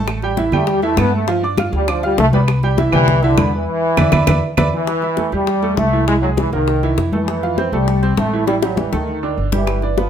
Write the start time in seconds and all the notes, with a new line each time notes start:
Already playing: A1 A3 A4 A5
0.08 high bongo, high conga, claves
0.22 G3 G4 G5, high bongo, high conga
0.37 E3 E4 E5, high bongo, high conga
0.52 E2 G3 A3 G4 G5, high bongo, high conga, low conga, claves
0.67 G3, high bongo, high conga
0.82 E3 A3 E4 E5, high bongo, high conga
0.97 G2 A3 B3 A4 A5, high bongo, low bongo, high conga, claves
1.14 A3
1.27 F3 F4 F5, high bongo, high conga
1.42 D4 D5 D6, high conga
1.57 F4 F5 F6, high bongo, high conga, claves
1.72 D2 G3, high bongo, high conga
1.88 F3 D4 D5 D6, high bongo, high conga, claves
2.03 G3 F4 F5 F6, high bongo, high conga
2.18 C2 A3, high bongo, low bongo, high conga
2.33 G3 B3 B4 B5, high bongo, high conga
2.48 high bongo, high conga, claves
2.63 G3 G4 G5, high bongo, high conga
2.78 E3 E4 E5, high bongo, high conga
2.92 C2 E3 G3 G4 G5, high bongo, high conga, low conga, claves
3.08 high bongo, high conga, low conga
3.23 D3 E3 E4 E5, high bongo, high conga
3.37 E2 B3 B4 B5, high bongo, low bongo, high conga, claves
3.54 E3
3.97 E2 B4 D5 E5, low bongo, low conga, claves
4.12 E2 B4 D5 E5, low bongo, low conga, claves
4.27 E2 B4 D5 E5, low bongo, low conga, claves
4.57 E2 B4 D5 E5, low bongo, low conga, claves
4.73 E3
4.87 high bongo, high conga
5.02 E4 E5, high bongo, high conga
5.17 A3 A4, high bongo, high conga
5.32 E2 G3 G4, high bongo, high conga
5.47 high bongo, high conga
5.62 A3 A4, high bongo, high conga
5.77 C2 A3, high bongo, low bongo, high conga
5.93 E3 E4
6.07 E3 G#3 E4, high bongo, high conga
6.22 F#3 G#3 G#4, high conga
6.37 E3, high bongo, high conga
6.52 C2 D#3 A#3 A#4, high bongo, high conga
6.68 high bongo, high conga
6.82 E3 E4, high bongo, high conga
6.97 F2, high bongo, low bongo, high conga
7.12 E3 A3 A4, high bongo, high conga
7.28 high bongo, high conga
7.43 F4 F5, high bongo, high conga
7.58 C4 C5, high bongo, high conga
7.72 C2 G3 A3 A4, high bongo, high conga
7.88 high bongo, high conga
8.03 C4 C5, high bongo, high conga
8.16 A1 A3, high bongo, low bongo, high conga
8.33 E3 E4
8.47 E3 G3 E4, high bongo, high conga
8.62 F#3 G3 G4, high bongo, high conga
8.77 E3, high bongo, high conga
8.92 D2 D#3 A3 A4, low bongo, high conga
9.08 high conga
9.23 D3 D4, high conga
9.38 G1, high conga
9.52 E3 G3 G4, low bongo, high conga
9.67 high bongo, high conga, claves
9.82 D4 D5, high bongo, high conga
9.96 F3 B3 B4, high bongo, high conga